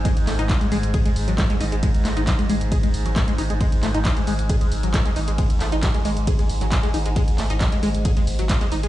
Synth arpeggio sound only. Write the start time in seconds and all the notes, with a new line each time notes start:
0.05 G#3
0.27 A3
0.39 D#4
0.49 F#3
0.61 G#3
0.72 G#3
0.94 G#4
1.06 G#3
1.28 F#3
1.38 G#3
1.50 G#3
1.61 D#4
1.72 G#3
1.83 G#3
2.05 A3
2.17 D#4
2.27 F#3
2.39 G#3
2.49 G#3
2.72 G#4
2.83 G#3
3.06 F#3
3.16 G#3
3.28 G#3
3.38 D#4
3.50 G#3
3.61 G#3
3.83 A3
3.95 D#4
4.05 F#3
4.17 G#3
4.27 G#3
4.50 G#4
4.61 G#3
4.83 F#3
4.94 G#3
5.06 G#3
5.16 D#4
5.28 G#3
5.38 G#3
5.61 A3
5.72 D#4
5.83 F#3
5.95 G#3
6.05 G#3
6.27 G#4
6.39 G#3
6.61 F#3
6.72 G#3
6.83 G#3
6.94 D#4
7.06 G#3
7.16 G#3
7.39 A3
7.50 D#4
7.61 F#3
7.72 G#3
7.83 G#3
8.05 G#4
8.17 G#3
8.39 F#3
8.50 G#3
8.61 G#3
8.72 D#4
8.83 G#3